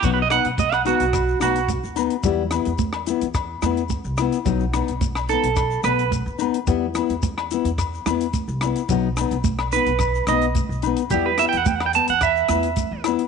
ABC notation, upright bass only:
X:1
M:4/4
L:1/16
Q:1/4=108
K:Em
V:1 name="Upright bass" clef=bass
B,,,3 B,,,4 B,,,3 B,,,3 ^D,,2 z | E,,3 E,,4 E,,3 E,,3 C,,2 z | B,,,3 B,,,4 B,,,3 B,,,3 ^D,,2 z | E,,3 E,,4 E,,3 E,,3 C,,2 z |
B,,,3 B,,,4 B,,,3 B,,,3 B,,,2 z | E,,3 E,,4 E,,3 E,,3 E,,2 z |]